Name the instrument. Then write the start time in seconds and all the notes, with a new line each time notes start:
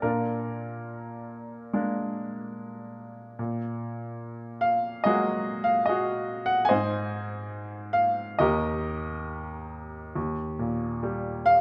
grand piano
0.02 A#2 D4 F4 A#4
1.73 G#3 A#3 D4
3.39 A#2
4.61 F5
5.04 F#3 G#3 A#3 F#4 G#4 D#5
5.64 F5
5.86 F#4 G#4 D#5
6.46 F#5
6.65 C5 D#5 G#5
6.71 G#2
7.93 F5
8.39 D#2 G4 A#4 D#5
10.15 D#2
10.59 A#2
11.03 G3
11.46 F5